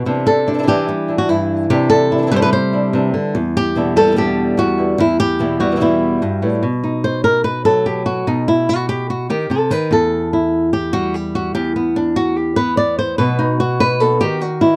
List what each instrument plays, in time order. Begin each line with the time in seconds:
0.05 nylon-string guitar C3 E3 G3 D4 E4
0.26 nylon-string guitar G3 D4 E4 A4
0.47 nylon-string guitar G3 D4 E4
0.54 nylon-string guitar E3 G3 D4 E4
0.58 nylon-string guitar E3 G3 D4 E4
0.63 nylon-string guitar E3 G3 D4 E4
0.67 nylon-string guitar C3 E3 G3 D4 E4 G4
0.88 nylon-string guitar G3, muted nylon-string guitar stroke
1.08 nylon-string guitar G3 D4 E4
1.18 nylon-string guitar F#4
1.28 nylon-string guitar G2 E3 G3 D4 E4
1.70 nylon-string guitar C3 E3 G3 D4 E4 G4
1.90 nylon-string guitar G3 D4 E4 A4
2.11 nylon-string guitar G3 D4 E4
2.18 nylon-string guitar E3 G3 D4 E4
2.22 nylon-string guitar E3 G3 D4 E4
2.27 nylon-string guitar E3 G3 D4 E4
2.31 nylon-string guitar C3 E3 G3 D4 E4 B4
2.36 nylon-string guitar C5
2.42 nylon-string guitar B4
2.52 nylon-string guitar C5, muted nylon-string guitar stroke
2.73 nylon-string guitar G3 D4 E4
2.93 nylon-string guitar C3 E3 G3 D4 E4
3.14 nylon-string guitar D3
3.35 nylon-string guitar E2, muted nylon-string guitar stroke
3.57 nylon-string guitar G4
3.75 nylon-string guitar E2 B2 D3 G3 B3 E4
3.96 nylon-string guitar D3 G3 B3 A4
4.03 nylon-string guitar B2 D3 G3 B3 E4
4.07 nylon-string guitar B2 D3 G3 B3 E4
4.12 nylon-string guitar B2 D3 G3 B3 E4
4.16 nylon-string guitar E2 B2 D3 G3 B3 E4 G4
4.57 nylon-string guitar E2 F#4, muted nylon-string guitar stroke
4.78 nylon-string guitar D3 G3 B3 E4
4.98 nylon-string guitar E2 E4, muted nylon-string guitar stroke
5.20 nylon-string guitar G4
5.39 nylon-string guitar E2 B2 E3 G3 B3 E4
5.60 nylon-string guitar E3 G3 B3 E4 F#4
5.71 nylon-string guitar B2 E3 G3 B3 E4
5.76 nylon-string guitar B2 E3 G3 B3 E4
5.80 nylon-string guitar E2 B2 E3 G3 B3 E4
6.22 nylon-string guitar G2, muted nylon-string guitar stroke
6.42 nylon-string guitar A2 E3 G3 B3 E4
6.63 nylon-string guitar B2
6.84 nylon-string guitar D#4
7.04 nylon-string guitar C5
7.24 nylon-string guitar A#4
7.44 nylon-string guitar B4
7.65 nylon-string guitar F#3 A4
7.86 nylon-string guitar G4
8.06 nylon-string guitar F#4
8.27 nylon-string guitar B2 D#4
8.48 nylon-string guitar E4
8.69 nylon-string guitar F#4
8.89 nylon-string guitar G4
9.10 nylon-string guitar F#4
9.30 nylon-string guitar D#3 G4
9.50 nylon-string guitar C3 A4
9.71 nylon-string guitar D#3 B4
9.91 nylon-string guitar E2 A4
10.33 nylon-string guitar E4
10.73 nylon-string guitar G4
10.93 nylon-string guitar G3 F#4
11.14 nylon-string guitar G4
11.35 nylon-string guitar F#4
11.55 nylon-string guitar E2 G4
11.76 nylon-string guitar B3
11.96 nylon-string guitar D4
12.16 nylon-string guitar F#4
12.37 nylon-string guitar G4
12.56 nylon-string guitar B3 B4
12.77 nylon-string guitar D5
12.99 nylon-string guitar C5
13.18 nylon-string guitar B2 F#3 B3 D#4 F#4 B4
13.39 nylon-string guitar B3 D#4 F#4
13.60 nylon-string guitar F#4, muted nylon-string guitar stroke
13.80 nylon-string guitar B3 D#4 F#4 B4
14.00 nylon-string guitar B2 F#3 B3 D#4 F#4 A4
14.20 nylon-string guitar D#3 B3 D#4 F#4 G4
14.41 nylon-string guitar F#4, muted nylon-string guitar stroke
14.61 nylon-string guitar B3 D#4 E4 F#4